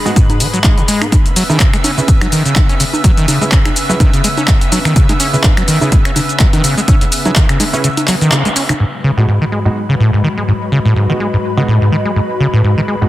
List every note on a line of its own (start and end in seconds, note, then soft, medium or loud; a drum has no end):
0.00 1.08 G#2 medium
0.00 1.08 G#3 medium
0.00 1.08 B4 medium
0.05 0.11 G#3 medium
0.05 0.14 G#3 medium
0.05 0.14 B3 medium
0.05 0.14 D#4 medium
0.05 0.14 F#4 loud
0.05 shaker soft
0.16 0.42 G#2 medium
0.16 kick loud
0.16 closed hi-hat medium
0.16 shaker soft
0.30 closed hi-hat medium
0.30 high conga medium
0.30 shaker soft
0.40 0.48 D#3 medium
0.40 open hi-hat loud
0.40 shaker medium
0.54 0.59 F#3 medium
0.54 closed hi-hat soft
0.54 shaker soft
0.64 0.79 G#3 medium
0.64 kick loud
0.64 clap loud
0.64 closed hi-hat medium
0.64 high conga medium
0.64 shaker soft
0.78 0.83 C#3 loud
0.78 closed hi-hat soft
0.78 shaker soft
0.88 1.03 G#3 loud
0.88 open hi-hat loud
0.88 shaker medium
1.02 1.07 B3 medium
1.02 finger snap medium
1.02 high conga medium
1.02 shaker soft
1.12 8.76 C#3 medium
1.12 1.17 C#3 medium
1.12 8.76 B3 medium
1.12 8.76 E5 medium
1.12 kick loud
1.12 closed hi-hat medium
1.12 high conga medium
1.12 shaker soft
1.26 closed hi-hat medium
1.26 shaker soft
1.36 1.44 F#3 loud
1.36 open hi-hat loud
1.36 shaker medium
1.49 1.58 D#3 loud
1.49 1.58 C#4 medium
1.49 1.58 E4 medium
1.49 1.58 G#4 medium
1.49 1.58 B4 medium
1.49 high conga medium
1.49 shaker soft
1.60 1.71 C#3 medium
1.60 kick loud
1.60 clap loud
1.60 closed hi-hat medium
1.60 shaker soft
1.73 1.77 G#3 loud
1.73 finger snap medium
1.73 closed hi-hat medium
1.73 shaker soft
1.84 1.92 C#4 medium
1.84 open hi-hat loud
1.84 high conga medium
1.84 shaker medium
1.98 2.01 C#3 medium
1.98 2.06 C#4 medium
1.98 2.06 E4 medium
1.98 2.06 G#4 medium
1.98 2.06 B4 medium
1.98 shaker soft
2.08 kick loud
2.08 closed hi-hat medium
2.08 shaker soft
2.21 2.27 F#3 loud
2.21 finger snap medium
2.21 closed hi-hat medium
2.21 high conga medium
2.21 shaker soft
2.32 2.43 D#3 loud
2.32 open hi-hat loud
2.32 shaker medium
2.45 2.54 C#3 medium
2.45 closed hi-hat soft
2.45 shaker soft
2.56 2.60 G#3 loud
2.56 kick loud
2.56 clap loud
2.56 closed hi-hat medium
2.56 high conga medium
2.56 shaker soft
2.69 2.75 C#4 medium
2.69 closed hi-hat medium
2.69 shaker soft
2.80 2.85 C#3 medium
2.80 open hi-hat loud
2.80 shaker medium
2.93 high conga medium
2.93 shaker soft
3.04 3.11 F#3 loud
3.04 kick loud
3.04 closed hi-hat medium
3.04 shaker soft
3.17 3.26 D#3 loud
3.17 closed hi-hat medium
3.17 shaker soft
3.28 3.39 C#3 medium
3.28 open hi-hat loud
3.28 high conga medium
3.28 shaker medium
3.41 3.45 G#3 loud
3.41 3.50 C#4 medium
3.41 3.50 E4 medium
3.41 3.50 G#4 medium
3.41 3.50 B4 medium
3.41 shaker soft
3.52 3.59 C#4 medium
3.52 kick loud
3.52 clap loud
3.52 closed hi-hat medium
3.52 shaker soft
3.65 3.69 C#3 medium
3.65 finger snap medium
3.65 closed hi-hat medium
3.65 high conga medium
3.65 shaker soft
3.76 open hi-hat loud
3.76 shaker medium
3.89 3.95 F#3 loud
3.89 3.98 C#4 loud
3.89 3.98 E4 medium
3.89 3.98 G#4 medium
3.89 3.98 B4 loud
3.89 shaker soft
4.00 4.11 D#3 loud
4.00 kick loud
4.00 closed hi-hat medium
4.00 high conga medium
4.00 shaker soft
4.13 4.22 C#3 medium
4.13 closed hi-hat medium
4.13 shaker soft
4.24 4.28 G#3 loud
4.24 open hi-hat loud
4.24 shaker medium
4.37 4.43 C#4 medium
4.37 closed hi-hat soft
4.37 high conga medium
4.37 shaker soft
4.48 4.53 C#3 medium
4.48 kick loud
4.48 clap loud
4.48 closed hi-hat medium
4.48 shaker soft
4.61 closed hi-hat medium
4.61 shaker soft
4.72 4.79 F#3 loud
4.72 open hi-hat loud
4.72 high conga medium
4.72 shaker medium
4.85 4.94 D#3 loud
4.85 finger snap medium
4.85 shaker soft
4.96 5.07 C#3 medium
4.96 kick loud
4.96 closed hi-hat medium
4.96 shaker soft
5.09 5.13 G#3 loud
5.09 closed hi-hat medium
5.09 high conga medium
5.09 shaker soft
5.20 5.27 C#4 medium
5.20 open hi-hat loud
5.20 shaker medium
5.33 5.37 C#3 medium
5.33 5.42 C#4 medium
5.33 5.42 E4 medium
5.33 5.42 G#4 medium
5.33 5.42 B4 medium
5.33 shaker soft
5.44 kick loud
5.44 clap loud
5.44 closed hi-hat medium
5.44 high conga medium
5.44 shaker soft
5.57 5.63 F#3 loud
5.57 finger snap medium
5.57 closed hi-hat medium
5.57 shaker soft
5.68 5.79 D#3 loud
5.68 open hi-hat loud
5.68 shaker medium
5.81 5.90 C#3 medium
5.81 5.90 C#4 medium
5.81 5.90 E4 medium
5.81 5.90 G#4 medium
5.81 5.90 B4 medium
5.81 high conga medium
5.81 shaker soft
5.92 5.96 G#3 loud
5.92 kick loud
5.92 closed hi-hat medium
5.92 shaker soft
6.05 6.11 C#4 medium
6.05 finger snap medium
6.05 closed hi-hat medium
6.05 shaker soft
6.16 6.20 C#3 medium
6.16 open hi-hat loud
6.16 high conga medium
6.16 shaker medium
6.29 closed hi-hat soft
6.29 shaker soft
6.40 6.47 F#3 loud
6.40 kick loud
6.40 clap loud
6.40 closed hi-hat medium
6.40 shaker soft
6.53 6.62 D#3 loud
6.53 closed hi-hat medium
6.53 high conga medium
6.53 shaker soft
6.64 6.75 C#3 medium
6.64 open hi-hat loud
6.64 shaker medium
6.77 6.81 G#3 loud
6.77 shaker soft
6.88 6.95 C#4 medium
6.88 kick loud
6.88 closed hi-hat medium
6.88 high conga medium
6.88 shaker soft
7.01 7.05 C#3 medium
7.01 closed hi-hat medium
7.01 shaker soft
7.12 open hi-hat loud
7.12 shaker medium
7.25 7.31 F#3 loud
7.25 7.34 C#4 medium
7.25 7.34 E4 medium
7.25 7.34 G#4 medium
7.25 7.34 B4 medium
7.25 closed hi-hat soft
7.25 high conga medium
7.25 shaker soft
7.36 7.47 D#3 loud
7.36 kick loud
7.36 clap loud
7.36 closed hi-hat medium
7.36 shaker soft
7.49 7.58 C#3 medium
7.49 finger snap medium
7.49 closed hi-hat medium
7.49 shaker soft
7.60 7.65 G#3 loud
7.60 open hi-hat loud
7.60 high conga medium
7.60 shaker medium
7.73 7.82 C#4 loud
7.73 7.79 C#4 medium
7.73 7.82 E4 medium
7.73 7.82 G#4 medium
7.73 7.82 B4 loud
7.73 shaker soft
7.84 7.89 C#3 medium
7.84 closed hi-hat medium
7.84 shaker soft
7.97 closed hi-hat medium
7.97 high conga medium
7.97 shaker soft
8.08 8.15 F#3 loud
8.08 clap medium
8.08 open hi-hat loud
8.08 shaker medium
8.21 8.30 D#3 loud
8.21 closed hi-hat soft
8.21 shaker soft
8.32 8.43 C#3 medium
8.32 clap loud
8.32 closed hi-hat medium
8.32 high conga medium
8.32 shaker soft
8.45 8.49 G#3 loud
8.45 closed hi-hat medium
8.45 shaker soft
8.56 8.63 C#4 medium
8.56 open hi-hat loud
8.56 shaker medium
8.69 8.73 C#3 medium
8.69 finger snap medium
8.69 closed hi-hat soft
8.69 high conga medium
8.69 shaker soft
8.80 13.09 G#2 medium
8.80 8.85 G#2 medium
8.80 12.60 F#3 medium
8.80 13.09 G#3 medium
8.80 13.09 B4 medium
8.80 crash medium
8.94 shaker soft
9.04 9.11 C#3 loud
9.14 9.26 A2 loud
9.14 9.26 G#3 medium
9.14 9.26 B3 medium
9.14 9.26 D#4 medium
9.14 13.09 F#4 medium
9.14 9.26 F#4 medium
9.14 13.09 D#5 medium
9.28 9.39 G#2 medium
9.41 9.45 D#3 loud
9.41 13.09 B4 medium
9.52 9.59 G#3 medium
9.52 shaker medium
9.65 9.69 G#2 medium
9.65 9.74 G#3 medium
9.65 9.74 B3 medium
9.65 9.74 D#4 medium
9.65 9.74 F#4 medium
9.89 9.95 C#3 loud
10.00 10.11 A2 loud
10.00 shaker medium
10.13 10.22 G#2 medium
10.24 10.28 D#3 loud
10.37 10.43 G#3 medium
10.48 10.52 G#2 medium
10.48 shaker medium
10.62 shaker soft
10.72 10.79 C#3 loud
10.85 10.94 A2 loud
10.96 11.07 G#2 medium
10.96 shaker medium
11.09 11.13 D#3 loud
11.09 11.18 G#3 medium
11.09 11.18 B3 medium
11.09 11.18 D#4 medium
11.09 11.18 F#4 medium
11.20 11.27 G#3 medium
11.33 11.37 G#2 medium
11.44 shaker medium
11.57 11.63 C#3 loud
11.57 11.66 G#3 medium
11.57 11.66 B3 medium
11.57 11.66 D#4 medium
11.57 11.66 F#4 loud
11.68 11.79 A2 loud
11.81 11.90 G#2 medium
11.92 11.96 D#3 loud
11.92 shaker medium
12.05 12.11 G#3 medium
12.16 12.20 G#2 medium
12.30 shaker soft
12.40 12.47 C#3 loud
12.40 shaker medium
12.53 12.62 A2 loud
12.64 12.75 G#2 medium
12.64 13.09 G#3 medium
12.77 12.81 D#3 loud
12.88 12.95 G#3 medium
12.88 shaker medium
13.01 13.05 G#2 medium
13.01 13.09 G#3 medium
13.01 13.09 B3 medium
13.01 13.09 D#4 medium
13.01 13.09 F#4 medium
13.01 shaker soft